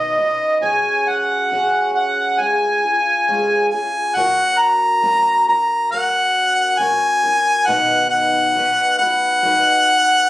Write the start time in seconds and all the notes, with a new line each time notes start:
Already playing: B2 D#3 F#3 C#4 D#4 B4 D#5
0.16 F#3 C#4 D#4 B4
0.62 C#3 F#3 C#4 F#4 G#4 G#5
1.06 F#5
1.52 C#3 F#3 C#4 F#4 G#4
1.94 F#5
2.38 G#3 C#4 F4 G#5
2.42 G#4
2.83 C#4 F4 G#4
3.28 C#3 G#3 C#4 F4 G#4
3.70 F4 G#4 G#5
3.75 C#4
4.15 F#3 C#4 F#4 A#4 F#5
4.59 A#5
5.02 F#3 C#4 F#4 A#4
5.48 C#4 F#4 A#4 A#5
5.90 F#3 C#4 F#4 A#4 F#5
6.78 F#3 C#4 F#4 A#4 G#5
7.23 C#4 F#4 A#4
7.67 B2 D#3 F#3 B3 D#4 B4 F#5
8.10 F#5
8.55 F#3 B3 D#4 B4
8.98 B3 D#4 B4 F#5
9.03 F#3
9.43 F#3 B3 D#4 B4